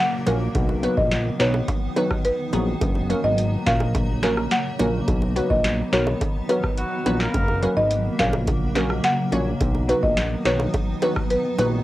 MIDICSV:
0, 0, Header, 1, 8, 480
1, 0, Start_track
1, 0, Tempo, 566038
1, 466, Time_signature, 4, 2, 24, 8
1, 10036, End_track
2, 0, Start_track
2, 0, Title_t, "Marimba"
2, 0, Program_c, 0, 12
2, 0, Note_on_c, 0, 78, 92
2, 325, Note_off_c, 0, 78, 0
2, 827, Note_on_c, 0, 75, 76
2, 933, Note_off_c, 0, 75, 0
2, 1186, Note_on_c, 0, 73, 83
2, 1293, Note_off_c, 0, 73, 0
2, 1908, Note_on_c, 0, 71, 84
2, 2246, Note_off_c, 0, 71, 0
2, 2748, Note_on_c, 0, 75, 80
2, 2854, Note_off_c, 0, 75, 0
2, 3108, Note_on_c, 0, 77, 91
2, 3214, Note_off_c, 0, 77, 0
2, 3829, Note_on_c, 0, 78, 74
2, 4166, Note_off_c, 0, 78, 0
2, 4666, Note_on_c, 0, 75, 78
2, 4773, Note_off_c, 0, 75, 0
2, 5028, Note_on_c, 0, 73, 77
2, 5134, Note_off_c, 0, 73, 0
2, 5506, Note_on_c, 0, 71, 83
2, 5613, Note_off_c, 0, 71, 0
2, 6587, Note_on_c, 0, 75, 89
2, 6694, Note_off_c, 0, 75, 0
2, 6947, Note_on_c, 0, 77, 83
2, 7054, Note_off_c, 0, 77, 0
2, 7668, Note_on_c, 0, 78, 95
2, 8005, Note_off_c, 0, 78, 0
2, 8505, Note_on_c, 0, 75, 75
2, 8613, Note_off_c, 0, 75, 0
2, 8865, Note_on_c, 0, 73, 88
2, 8973, Note_off_c, 0, 73, 0
2, 9587, Note_on_c, 0, 71, 83
2, 9925, Note_off_c, 0, 71, 0
2, 10036, End_track
3, 0, Start_track
3, 0, Title_t, "Synth pluck"
3, 0, Program_c, 1, 84
3, 225, Note_on_c, 1, 54, 79
3, 226, Note_on_c, 1, 58, 73
3, 228, Note_on_c, 1, 61, 75
3, 229, Note_on_c, 1, 66, 70
3, 231, Note_on_c, 1, 70, 86
3, 322, Note_off_c, 1, 54, 0
3, 322, Note_off_c, 1, 58, 0
3, 323, Note_off_c, 1, 61, 0
3, 324, Note_off_c, 1, 66, 0
3, 325, Note_off_c, 1, 70, 0
3, 705, Note_on_c, 1, 54, 81
3, 706, Note_on_c, 1, 59, 75
3, 708, Note_on_c, 1, 63, 74
3, 709, Note_on_c, 1, 66, 73
3, 710, Note_on_c, 1, 71, 88
3, 801, Note_off_c, 1, 54, 0
3, 802, Note_off_c, 1, 59, 0
3, 803, Note_off_c, 1, 63, 0
3, 804, Note_off_c, 1, 66, 0
3, 804, Note_off_c, 1, 71, 0
3, 1183, Note_on_c, 1, 54, 80
3, 1186, Note_on_c, 1, 59, 72
3, 1186, Note_on_c, 1, 63, 74
3, 1188, Note_on_c, 1, 66, 74
3, 1189, Note_on_c, 1, 71, 88
3, 1281, Note_off_c, 1, 54, 0
3, 1282, Note_off_c, 1, 59, 0
3, 1282, Note_off_c, 1, 63, 0
3, 1283, Note_off_c, 1, 66, 0
3, 1284, Note_off_c, 1, 71, 0
3, 1664, Note_on_c, 1, 54, 90
3, 1666, Note_on_c, 1, 59, 81
3, 1667, Note_on_c, 1, 63, 85
3, 1669, Note_on_c, 1, 66, 84
3, 1670, Note_on_c, 1, 71, 103
3, 1761, Note_off_c, 1, 54, 0
3, 1762, Note_off_c, 1, 59, 0
3, 1763, Note_off_c, 1, 63, 0
3, 1763, Note_off_c, 1, 66, 0
3, 1764, Note_off_c, 1, 71, 0
3, 2145, Note_on_c, 1, 54, 84
3, 2147, Note_on_c, 1, 59, 73
3, 2148, Note_on_c, 1, 63, 75
3, 2150, Note_on_c, 1, 66, 72
3, 2151, Note_on_c, 1, 68, 88
3, 2241, Note_off_c, 1, 54, 0
3, 2242, Note_off_c, 1, 59, 0
3, 2243, Note_off_c, 1, 63, 0
3, 2244, Note_off_c, 1, 66, 0
3, 2244, Note_off_c, 1, 68, 0
3, 2626, Note_on_c, 1, 54, 83
3, 2628, Note_on_c, 1, 58, 71
3, 2629, Note_on_c, 1, 61, 76
3, 2631, Note_on_c, 1, 66, 74
3, 2632, Note_on_c, 1, 70, 88
3, 2722, Note_off_c, 1, 54, 0
3, 2723, Note_off_c, 1, 58, 0
3, 2724, Note_off_c, 1, 61, 0
3, 2725, Note_off_c, 1, 66, 0
3, 2725, Note_off_c, 1, 70, 0
3, 3106, Note_on_c, 1, 54, 77
3, 3107, Note_on_c, 1, 58, 72
3, 3108, Note_on_c, 1, 61, 74
3, 3110, Note_on_c, 1, 66, 75
3, 3112, Note_on_c, 1, 70, 90
3, 3202, Note_off_c, 1, 54, 0
3, 3203, Note_off_c, 1, 58, 0
3, 3203, Note_off_c, 1, 61, 0
3, 3204, Note_off_c, 1, 66, 0
3, 3205, Note_off_c, 1, 70, 0
3, 3585, Note_on_c, 1, 54, 92
3, 3586, Note_on_c, 1, 58, 85
3, 3587, Note_on_c, 1, 61, 86
3, 3588, Note_on_c, 1, 66, 86
3, 3590, Note_on_c, 1, 70, 106
3, 3681, Note_off_c, 1, 54, 0
3, 3682, Note_off_c, 1, 58, 0
3, 3683, Note_off_c, 1, 61, 0
3, 3683, Note_off_c, 1, 66, 0
3, 3684, Note_off_c, 1, 70, 0
3, 4064, Note_on_c, 1, 54, 84
3, 4065, Note_on_c, 1, 58, 75
3, 4067, Note_on_c, 1, 61, 74
3, 4068, Note_on_c, 1, 66, 76
3, 4070, Note_on_c, 1, 70, 87
3, 4161, Note_off_c, 1, 54, 0
3, 4162, Note_off_c, 1, 58, 0
3, 4162, Note_off_c, 1, 61, 0
3, 4163, Note_off_c, 1, 66, 0
3, 4164, Note_off_c, 1, 70, 0
3, 4544, Note_on_c, 1, 54, 83
3, 4545, Note_on_c, 1, 59, 74
3, 4547, Note_on_c, 1, 63, 72
3, 4548, Note_on_c, 1, 66, 74
3, 4549, Note_on_c, 1, 71, 87
3, 4641, Note_off_c, 1, 54, 0
3, 4641, Note_off_c, 1, 59, 0
3, 4642, Note_off_c, 1, 63, 0
3, 4643, Note_off_c, 1, 66, 0
3, 4644, Note_off_c, 1, 71, 0
3, 5025, Note_on_c, 1, 54, 81
3, 5026, Note_on_c, 1, 59, 76
3, 5028, Note_on_c, 1, 63, 75
3, 5030, Note_on_c, 1, 66, 78
3, 5031, Note_on_c, 1, 70, 90
3, 5122, Note_off_c, 1, 54, 0
3, 5122, Note_off_c, 1, 59, 0
3, 5123, Note_off_c, 1, 63, 0
3, 5124, Note_off_c, 1, 66, 0
3, 5124, Note_off_c, 1, 70, 0
3, 5504, Note_on_c, 1, 54, 80
3, 5506, Note_on_c, 1, 59, 72
3, 5507, Note_on_c, 1, 63, 72
3, 5509, Note_on_c, 1, 66, 71
3, 5510, Note_on_c, 1, 70, 86
3, 5601, Note_off_c, 1, 54, 0
3, 5602, Note_off_c, 1, 59, 0
3, 5602, Note_off_c, 1, 63, 0
3, 5603, Note_off_c, 1, 66, 0
3, 5604, Note_off_c, 1, 70, 0
3, 5986, Note_on_c, 1, 54, 94
3, 5987, Note_on_c, 1, 59, 88
3, 5989, Note_on_c, 1, 63, 86
3, 5990, Note_on_c, 1, 66, 85
3, 5991, Note_on_c, 1, 71, 105
3, 6082, Note_off_c, 1, 54, 0
3, 6083, Note_off_c, 1, 59, 0
3, 6084, Note_off_c, 1, 63, 0
3, 6084, Note_off_c, 1, 66, 0
3, 6085, Note_off_c, 1, 71, 0
3, 6465, Note_on_c, 1, 54, 81
3, 6467, Note_on_c, 1, 58, 73
3, 6468, Note_on_c, 1, 61, 71
3, 6470, Note_on_c, 1, 66, 73
3, 6471, Note_on_c, 1, 70, 87
3, 6562, Note_off_c, 1, 54, 0
3, 6562, Note_off_c, 1, 58, 0
3, 6563, Note_off_c, 1, 61, 0
3, 6564, Note_off_c, 1, 66, 0
3, 6565, Note_off_c, 1, 70, 0
3, 6944, Note_on_c, 1, 54, 82
3, 6945, Note_on_c, 1, 58, 73
3, 6947, Note_on_c, 1, 61, 76
3, 6948, Note_on_c, 1, 66, 73
3, 6950, Note_on_c, 1, 70, 87
3, 7041, Note_off_c, 1, 54, 0
3, 7042, Note_off_c, 1, 58, 0
3, 7042, Note_off_c, 1, 61, 0
3, 7043, Note_off_c, 1, 66, 0
3, 7044, Note_off_c, 1, 70, 0
3, 7425, Note_on_c, 1, 54, 90
3, 7426, Note_on_c, 1, 58, 80
3, 7427, Note_on_c, 1, 61, 83
3, 7429, Note_on_c, 1, 66, 85
3, 7431, Note_on_c, 1, 70, 102
3, 7521, Note_off_c, 1, 54, 0
3, 7522, Note_off_c, 1, 58, 0
3, 7523, Note_off_c, 1, 61, 0
3, 7523, Note_off_c, 1, 66, 0
3, 7524, Note_off_c, 1, 70, 0
3, 7904, Note_on_c, 1, 54, 81
3, 7905, Note_on_c, 1, 58, 73
3, 7907, Note_on_c, 1, 61, 76
3, 7908, Note_on_c, 1, 66, 75
3, 7910, Note_on_c, 1, 73, 91
3, 8001, Note_off_c, 1, 54, 0
3, 8002, Note_off_c, 1, 58, 0
3, 8003, Note_off_c, 1, 61, 0
3, 8003, Note_off_c, 1, 66, 0
3, 8004, Note_off_c, 1, 73, 0
3, 8383, Note_on_c, 1, 54, 79
3, 8385, Note_on_c, 1, 59, 73
3, 8387, Note_on_c, 1, 63, 73
3, 8388, Note_on_c, 1, 66, 74
3, 8389, Note_on_c, 1, 71, 88
3, 8480, Note_off_c, 1, 54, 0
3, 8482, Note_off_c, 1, 59, 0
3, 8482, Note_off_c, 1, 63, 0
3, 8483, Note_off_c, 1, 66, 0
3, 8484, Note_off_c, 1, 71, 0
3, 8864, Note_on_c, 1, 54, 80
3, 8866, Note_on_c, 1, 59, 72
3, 8867, Note_on_c, 1, 63, 72
3, 8868, Note_on_c, 1, 66, 73
3, 8870, Note_on_c, 1, 71, 91
3, 8961, Note_off_c, 1, 54, 0
3, 8962, Note_off_c, 1, 59, 0
3, 8963, Note_off_c, 1, 63, 0
3, 8963, Note_off_c, 1, 66, 0
3, 8964, Note_off_c, 1, 71, 0
3, 9344, Note_on_c, 1, 54, 92
3, 9345, Note_on_c, 1, 59, 85
3, 9347, Note_on_c, 1, 63, 85
3, 9348, Note_on_c, 1, 66, 86
3, 9349, Note_on_c, 1, 71, 103
3, 9441, Note_off_c, 1, 54, 0
3, 9442, Note_off_c, 1, 59, 0
3, 9442, Note_off_c, 1, 63, 0
3, 9443, Note_off_c, 1, 66, 0
3, 9444, Note_off_c, 1, 71, 0
3, 9824, Note_on_c, 1, 54, 80
3, 9824, Note_on_c, 1, 59, 76
3, 9826, Note_on_c, 1, 63, 72
3, 9827, Note_on_c, 1, 66, 74
3, 9829, Note_on_c, 1, 71, 86
3, 9921, Note_off_c, 1, 54, 0
3, 9921, Note_off_c, 1, 59, 0
3, 9922, Note_off_c, 1, 63, 0
3, 9923, Note_off_c, 1, 66, 0
3, 9923, Note_off_c, 1, 71, 0
3, 10036, End_track
4, 0, Start_track
4, 0, Title_t, "Horn section"
4, 0, Program_c, 2, 61
4, 5746, Note_on_c, 2, 54, 79
4, 5746, Note_on_c, 2, 66, 86
4, 6081, Note_off_c, 2, 54, 0
4, 6081, Note_off_c, 2, 66, 0
4, 6104, Note_on_c, 2, 58, 97
4, 6104, Note_on_c, 2, 70, 105
4, 6465, Note_off_c, 2, 58, 0
4, 6465, Note_off_c, 2, 70, 0
4, 10036, End_track
5, 0, Start_track
5, 0, Title_t, "Ambient pad"
5, 0, Program_c, 3, 92
5, 0, Note_on_c, 3, 49, 87
5, 0, Note_on_c, 3, 54, 80
5, 0, Note_on_c, 3, 58, 99
5, 447, Note_off_c, 3, 49, 0
5, 447, Note_off_c, 3, 58, 0
5, 467, Note_on_c, 3, 51, 85
5, 467, Note_on_c, 3, 59, 92
5, 2367, Note_off_c, 3, 51, 0
5, 2367, Note_off_c, 3, 59, 0
5, 2386, Note_on_c, 3, 49, 85
5, 2386, Note_on_c, 3, 58, 93
5, 4287, Note_off_c, 3, 49, 0
5, 4287, Note_off_c, 3, 58, 0
5, 4308, Note_on_c, 3, 51, 85
5, 4308, Note_on_c, 3, 59, 98
5, 6192, Note_off_c, 3, 54, 0
5, 6208, Note_off_c, 3, 51, 0
5, 6208, Note_off_c, 3, 59, 0
5, 6227, Note_on_c, 3, 54, 80
5, 6228, Note_on_c, 3, 49, 85
5, 6228, Note_on_c, 3, 58, 94
5, 8127, Note_off_c, 3, 54, 0
5, 8128, Note_off_c, 3, 49, 0
5, 8128, Note_off_c, 3, 58, 0
5, 8147, Note_on_c, 3, 51, 85
5, 8147, Note_on_c, 3, 54, 82
5, 8147, Note_on_c, 3, 59, 96
5, 10036, Note_off_c, 3, 51, 0
5, 10036, Note_off_c, 3, 54, 0
5, 10036, Note_off_c, 3, 59, 0
5, 10036, End_track
6, 0, Start_track
6, 0, Title_t, "Analog synth bass"
6, 0, Program_c, 4, 38
6, 228, Note_on_c, 4, 34, 95
6, 413, Note_off_c, 4, 34, 0
6, 468, Note_on_c, 4, 35, 113
6, 747, Note_off_c, 4, 35, 0
6, 827, Note_on_c, 4, 34, 95
6, 1106, Note_off_c, 4, 34, 0
6, 1188, Note_on_c, 4, 35, 94
6, 1374, Note_off_c, 4, 35, 0
6, 2148, Note_on_c, 4, 34, 90
6, 2333, Note_off_c, 4, 34, 0
6, 2387, Note_on_c, 4, 30, 107
6, 2666, Note_off_c, 4, 30, 0
6, 2748, Note_on_c, 4, 32, 93
6, 3027, Note_off_c, 4, 32, 0
6, 3107, Note_on_c, 4, 34, 86
6, 3793, Note_off_c, 4, 34, 0
6, 4066, Note_on_c, 4, 34, 101
6, 4252, Note_off_c, 4, 34, 0
6, 4307, Note_on_c, 4, 35, 115
6, 4586, Note_off_c, 4, 35, 0
6, 4667, Note_on_c, 4, 34, 98
6, 4946, Note_off_c, 4, 34, 0
6, 5027, Note_on_c, 4, 35, 95
6, 5213, Note_off_c, 4, 35, 0
6, 5988, Note_on_c, 4, 34, 93
6, 6173, Note_off_c, 4, 34, 0
6, 6227, Note_on_c, 4, 30, 106
6, 6506, Note_off_c, 4, 30, 0
6, 6587, Note_on_c, 4, 32, 93
6, 6866, Note_off_c, 4, 32, 0
6, 6946, Note_on_c, 4, 34, 90
6, 7632, Note_off_c, 4, 34, 0
6, 7905, Note_on_c, 4, 34, 95
6, 8092, Note_off_c, 4, 34, 0
6, 8147, Note_on_c, 4, 35, 114
6, 8426, Note_off_c, 4, 35, 0
6, 8506, Note_on_c, 4, 34, 93
6, 8785, Note_off_c, 4, 34, 0
6, 8865, Note_on_c, 4, 35, 97
6, 9051, Note_off_c, 4, 35, 0
6, 9826, Note_on_c, 4, 34, 93
6, 10012, Note_off_c, 4, 34, 0
6, 10036, End_track
7, 0, Start_track
7, 0, Title_t, "Downlifter"
7, 0, Program_c, 5, 103
7, 0, Note_on_c, 5, 60, 82
7, 2386, Note_off_c, 5, 60, 0
7, 10036, End_track
8, 0, Start_track
8, 0, Title_t, "Drums"
8, 225, Note_on_c, 9, 61, 79
8, 227, Note_on_c, 9, 42, 58
8, 310, Note_off_c, 9, 61, 0
8, 311, Note_off_c, 9, 42, 0
8, 466, Note_on_c, 9, 42, 72
8, 467, Note_on_c, 9, 36, 121
8, 467, Note_on_c, 9, 60, 70
8, 551, Note_off_c, 9, 42, 0
8, 552, Note_off_c, 9, 36, 0
8, 552, Note_off_c, 9, 60, 0
8, 586, Note_on_c, 9, 60, 51
8, 671, Note_off_c, 9, 60, 0
8, 707, Note_on_c, 9, 42, 54
8, 792, Note_off_c, 9, 42, 0
8, 826, Note_on_c, 9, 36, 90
8, 911, Note_off_c, 9, 36, 0
8, 946, Note_on_c, 9, 42, 75
8, 947, Note_on_c, 9, 38, 108
8, 1031, Note_off_c, 9, 42, 0
8, 1032, Note_off_c, 9, 38, 0
8, 1187, Note_on_c, 9, 38, 120
8, 1187, Note_on_c, 9, 42, 61
8, 1272, Note_off_c, 9, 38, 0
8, 1272, Note_off_c, 9, 42, 0
8, 1306, Note_on_c, 9, 60, 74
8, 1390, Note_off_c, 9, 60, 0
8, 1426, Note_on_c, 9, 36, 98
8, 1428, Note_on_c, 9, 42, 74
8, 1428, Note_on_c, 9, 60, 82
8, 1511, Note_off_c, 9, 36, 0
8, 1513, Note_off_c, 9, 42, 0
8, 1513, Note_off_c, 9, 60, 0
8, 1666, Note_on_c, 9, 42, 55
8, 1666, Note_on_c, 9, 60, 72
8, 1751, Note_off_c, 9, 42, 0
8, 1751, Note_off_c, 9, 60, 0
8, 1786, Note_on_c, 9, 36, 91
8, 1787, Note_on_c, 9, 37, 97
8, 1871, Note_off_c, 9, 36, 0
8, 1872, Note_off_c, 9, 37, 0
8, 1905, Note_on_c, 9, 42, 71
8, 1990, Note_off_c, 9, 42, 0
8, 2145, Note_on_c, 9, 61, 73
8, 2148, Note_on_c, 9, 42, 55
8, 2230, Note_off_c, 9, 61, 0
8, 2232, Note_off_c, 9, 42, 0
8, 2386, Note_on_c, 9, 60, 74
8, 2387, Note_on_c, 9, 36, 118
8, 2387, Note_on_c, 9, 42, 71
8, 2470, Note_off_c, 9, 60, 0
8, 2471, Note_off_c, 9, 42, 0
8, 2472, Note_off_c, 9, 36, 0
8, 2504, Note_on_c, 9, 60, 51
8, 2589, Note_off_c, 9, 60, 0
8, 2629, Note_on_c, 9, 42, 54
8, 2714, Note_off_c, 9, 42, 0
8, 2866, Note_on_c, 9, 42, 72
8, 2951, Note_off_c, 9, 42, 0
8, 3107, Note_on_c, 9, 36, 99
8, 3108, Note_on_c, 9, 38, 122
8, 3108, Note_on_c, 9, 42, 60
8, 3191, Note_off_c, 9, 36, 0
8, 3192, Note_off_c, 9, 38, 0
8, 3192, Note_off_c, 9, 42, 0
8, 3224, Note_on_c, 9, 60, 71
8, 3309, Note_off_c, 9, 60, 0
8, 3346, Note_on_c, 9, 36, 97
8, 3346, Note_on_c, 9, 60, 79
8, 3347, Note_on_c, 9, 42, 74
8, 3431, Note_off_c, 9, 36, 0
8, 3431, Note_off_c, 9, 60, 0
8, 3432, Note_off_c, 9, 42, 0
8, 3584, Note_on_c, 9, 60, 71
8, 3585, Note_on_c, 9, 38, 73
8, 3586, Note_on_c, 9, 42, 55
8, 3669, Note_off_c, 9, 60, 0
8, 3670, Note_off_c, 9, 38, 0
8, 3671, Note_off_c, 9, 42, 0
8, 3708, Note_on_c, 9, 37, 94
8, 3793, Note_off_c, 9, 37, 0
8, 3825, Note_on_c, 9, 42, 72
8, 3826, Note_on_c, 9, 38, 120
8, 3910, Note_off_c, 9, 42, 0
8, 3911, Note_off_c, 9, 38, 0
8, 4065, Note_on_c, 9, 61, 77
8, 4068, Note_on_c, 9, 42, 59
8, 4149, Note_off_c, 9, 61, 0
8, 4152, Note_off_c, 9, 42, 0
8, 4306, Note_on_c, 9, 42, 70
8, 4307, Note_on_c, 9, 36, 121
8, 4307, Note_on_c, 9, 60, 71
8, 4391, Note_off_c, 9, 42, 0
8, 4392, Note_off_c, 9, 36, 0
8, 4392, Note_off_c, 9, 60, 0
8, 4426, Note_on_c, 9, 60, 50
8, 4511, Note_off_c, 9, 60, 0
8, 4547, Note_on_c, 9, 42, 52
8, 4632, Note_off_c, 9, 42, 0
8, 4666, Note_on_c, 9, 36, 92
8, 4751, Note_off_c, 9, 36, 0
8, 4786, Note_on_c, 9, 38, 117
8, 4786, Note_on_c, 9, 42, 75
8, 4870, Note_off_c, 9, 42, 0
8, 4871, Note_off_c, 9, 38, 0
8, 5027, Note_on_c, 9, 38, 124
8, 5027, Note_on_c, 9, 42, 59
8, 5112, Note_off_c, 9, 38, 0
8, 5112, Note_off_c, 9, 42, 0
8, 5145, Note_on_c, 9, 60, 74
8, 5230, Note_off_c, 9, 60, 0
8, 5266, Note_on_c, 9, 36, 98
8, 5267, Note_on_c, 9, 42, 74
8, 5269, Note_on_c, 9, 60, 81
8, 5351, Note_off_c, 9, 36, 0
8, 5352, Note_off_c, 9, 42, 0
8, 5353, Note_off_c, 9, 60, 0
8, 5505, Note_on_c, 9, 42, 57
8, 5505, Note_on_c, 9, 60, 69
8, 5590, Note_off_c, 9, 42, 0
8, 5590, Note_off_c, 9, 60, 0
8, 5627, Note_on_c, 9, 36, 93
8, 5627, Note_on_c, 9, 37, 90
8, 5711, Note_off_c, 9, 36, 0
8, 5712, Note_off_c, 9, 37, 0
8, 5745, Note_on_c, 9, 42, 73
8, 5830, Note_off_c, 9, 42, 0
8, 5986, Note_on_c, 9, 61, 73
8, 5987, Note_on_c, 9, 42, 57
8, 6071, Note_off_c, 9, 42, 0
8, 6071, Note_off_c, 9, 61, 0
8, 6106, Note_on_c, 9, 38, 76
8, 6191, Note_off_c, 9, 38, 0
8, 6225, Note_on_c, 9, 60, 72
8, 6226, Note_on_c, 9, 42, 73
8, 6227, Note_on_c, 9, 36, 126
8, 6310, Note_off_c, 9, 60, 0
8, 6311, Note_off_c, 9, 42, 0
8, 6312, Note_off_c, 9, 36, 0
8, 6346, Note_on_c, 9, 60, 50
8, 6430, Note_off_c, 9, 60, 0
8, 6467, Note_on_c, 9, 42, 55
8, 6552, Note_off_c, 9, 42, 0
8, 6705, Note_on_c, 9, 42, 77
8, 6790, Note_off_c, 9, 42, 0
8, 6946, Note_on_c, 9, 36, 93
8, 6946, Note_on_c, 9, 38, 122
8, 6946, Note_on_c, 9, 42, 59
8, 7031, Note_off_c, 9, 36, 0
8, 7031, Note_off_c, 9, 38, 0
8, 7031, Note_off_c, 9, 42, 0
8, 7065, Note_on_c, 9, 60, 74
8, 7149, Note_off_c, 9, 60, 0
8, 7185, Note_on_c, 9, 36, 95
8, 7186, Note_on_c, 9, 42, 76
8, 7188, Note_on_c, 9, 60, 78
8, 7270, Note_off_c, 9, 36, 0
8, 7270, Note_off_c, 9, 42, 0
8, 7273, Note_off_c, 9, 60, 0
8, 7423, Note_on_c, 9, 38, 72
8, 7424, Note_on_c, 9, 42, 56
8, 7426, Note_on_c, 9, 60, 71
8, 7508, Note_off_c, 9, 38, 0
8, 7509, Note_off_c, 9, 42, 0
8, 7511, Note_off_c, 9, 60, 0
8, 7547, Note_on_c, 9, 37, 89
8, 7632, Note_off_c, 9, 37, 0
8, 7664, Note_on_c, 9, 42, 72
8, 7665, Note_on_c, 9, 38, 120
8, 7748, Note_off_c, 9, 42, 0
8, 7750, Note_off_c, 9, 38, 0
8, 7904, Note_on_c, 9, 61, 75
8, 7906, Note_on_c, 9, 42, 55
8, 7989, Note_off_c, 9, 61, 0
8, 7991, Note_off_c, 9, 42, 0
8, 8146, Note_on_c, 9, 36, 118
8, 8146, Note_on_c, 9, 42, 70
8, 8147, Note_on_c, 9, 60, 72
8, 8231, Note_off_c, 9, 36, 0
8, 8231, Note_off_c, 9, 42, 0
8, 8232, Note_off_c, 9, 60, 0
8, 8266, Note_on_c, 9, 60, 52
8, 8350, Note_off_c, 9, 60, 0
8, 8387, Note_on_c, 9, 42, 54
8, 8472, Note_off_c, 9, 42, 0
8, 8505, Note_on_c, 9, 36, 89
8, 8590, Note_off_c, 9, 36, 0
8, 8624, Note_on_c, 9, 42, 78
8, 8625, Note_on_c, 9, 38, 109
8, 8709, Note_off_c, 9, 42, 0
8, 8710, Note_off_c, 9, 38, 0
8, 8865, Note_on_c, 9, 38, 122
8, 8865, Note_on_c, 9, 42, 59
8, 8950, Note_off_c, 9, 38, 0
8, 8950, Note_off_c, 9, 42, 0
8, 8985, Note_on_c, 9, 60, 72
8, 9070, Note_off_c, 9, 60, 0
8, 9105, Note_on_c, 9, 36, 101
8, 9105, Note_on_c, 9, 42, 74
8, 9108, Note_on_c, 9, 60, 80
8, 9190, Note_off_c, 9, 36, 0
8, 9190, Note_off_c, 9, 42, 0
8, 9193, Note_off_c, 9, 60, 0
8, 9344, Note_on_c, 9, 42, 59
8, 9345, Note_on_c, 9, 60, 70
8, 9429, Note_off_c, 9, 42, 0
8, 9430, Note_off_c, 9, 60, 0
8, 9465, Note_on_c, 9, 36, 91
8, 9465, Note_on_c, 9, 37, 97
8, 9550, Note_off_c, 9, 36, 0
8, 9550, Note_off_c, 9, 37, 0
8, 9584, Note_on_c, 9, 42, 73
8, 9669, Note_off_c, 9, 42, 0
8, 9824, Note_on_c, 9, 61, 77
8, 9827, Note_on_c, 9, 42, 56
8, 9908, Note_off_c, 9, 61, 0
8, 9912, Note_off_c, 9, 42, 0
8, 10036, End_track
0, 0, End_of_file